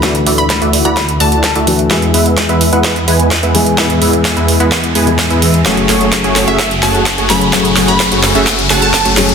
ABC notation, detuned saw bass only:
X:1
M:4/4
L:1/16
Q:1/4=128
K:Emix
V:1 name="Detuned saw bass" clef=bass
D,,2 D,,3 D,,2 D,,3 D,,3 D,,3 | E,,2 E,,3 E,,2 E,,3 E,,3 E,,3 | E,,2 E,,3 E,,2 E,,3 E,,3 E,,3 | F,,,2 F,,,3 F,,,2 F,,,3 F,,,3 F,,,3 |
F,,,2 F,,,3 F,,,2 F,,,3 F,,,3 F,,,3 |]